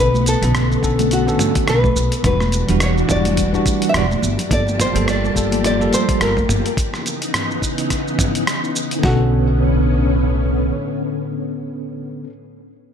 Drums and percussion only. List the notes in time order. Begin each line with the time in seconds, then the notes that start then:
0.14 high conga, shaker
0.26 closed hi-hat, shaker
0.43 closed hi-hat, low conga, shaker
0.55 cross-stick, closed hi-hat, mid tom, high conga, shaker
0.72 shaker
0.83 kick, shaker
0.99 closed hi-hat, high conga, low conga, shaker
1.11 closed hi-hat, shaker
1.28 shaker
1.39 closed hi-hat, mid tom, high conga, shaker
1.55 kick, closed hi-hat, shaker
1.68 cross-stick, closed hi-hat, shaker
1.84 kick, high conga, low conga, shaker
1.96 shaker
2.12 closed hi-hat, shaker
2.24 kick, closed hi-hat, mid tom, shaker
2.40 cross-stick, high conga, shaker
2.52 closed hi-hat, shaker
2.69 closed hi-hat, low conga, shaker
2.80 cross-stick, closed hi-hat, high conga, shaker
2.98 shaker
3.09 kick, mid tom, shaker
3.25 closed hi-hat, high conga, low conga, shaker
3.37 kick, closed hi-hat, shaker
3.54 shaker
3.66 kick, closed hi-hat, high conga, shaker
3.82 closed hi-hat, shaker
3.94 cross-stick, closed hi-hat, mid tom, shaker
4.11 high conga, shaker
4.23 shaker
4.38 closed hi-hat, low conga, shaker
4.51 kick, closed hi-hat, shaker
4.67 high conga, shaker
4.80 closed hi-hat, mid tom, shaker
4.95 closed hi-hat, low conga, shaker
5.08 cross-stick, closed hi-hat, high conga, shaker
5.25 shaker
5.36 kick, shaker
5.51 closed hi-hat, high conga, low conga, shaker
5.64 closed hi-hat, mid tom, shaker
5.81 shaker
5.93 closed hi-hat, high conga, shaker
6.09 kick, closed hi-hat, shaker
6.21 cross-stick, closed hi-hat, shaker
6.37 kick, high conga, low conga, shaker
6.49 mid tom, shaker
6.66 closed hi-hat, shaker
6.77 kick, closed hi-hat, shaker
6.94 cross-stick, shaker
7.06 closed hi-hat, shaker
7.22 closed hi-hat, shaker
7.34 cross-stick, closed hi-hat, mid tom, shaker
7.51 shaker
7.62 kick, shaker
7.78 closed hi-hat, shaker
7.90 kick, cross-stick, closed hi-hat, shaker
8.08 shaker
8.19 kick, closed hi-hat, mid tom, shaker
8.35 closed hi-hat, shaker
8.47 cross-stick, closed hi-hat, shaker
8.64 shaker
8.76 shaker
8.91 closed hi-hat, shaker
9.03 kick, snare